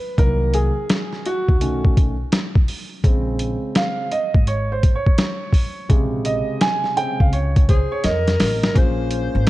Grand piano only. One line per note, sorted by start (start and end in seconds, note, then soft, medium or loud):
0.00 0.21 B4 loud
0.17 0.70 D#3 medium
0.17 0.70 F#3 medium
0.17 0.70 A#3 medium
0.17 0.56 A#4 loud
0.54 1.28 G#4 medium
1.26 1.93 F#4 medium
1.61 2.13 D#3 medium
1.61 2.13 A3 soft
1.61 2.13 C#4 medium
3.04 4.07 C#3 medium
3.04 4.08 G#3 medium
3.04 4.08 C4 medium
3.77 4.13 F5 medium
4.12 4.48 D#5 medium
4.48 4.72 C#5 medium
4.72 4.96 C5 medium
4.95 5.98 C#5 medium
5.89 8.72 C3 medium
5.89 6.95 C#3 medium
5.89 6.95 G#3 medium
6.25 6.59 D#5 medium
6.62 6.98 G#5 loud
6.96 7.29 C#3 medium
6.96 7.29 G#3 medium
6.96 7.29 C4 medium
6.96 7.21 G5 loud
7.20 7.33 F5 medium
7.33 7.70 C#5 medium
7.69 7.93 C5 medium
7.92 8.05 C#5 medium
8.04 8.71 D#5 medium
8.74 9.50 A#3 medium
8.74 9.50 C#4 medium
8.74 9.50 F4 medium
8.74 9.50 G#4 medium
8.74 9.50 C5 medium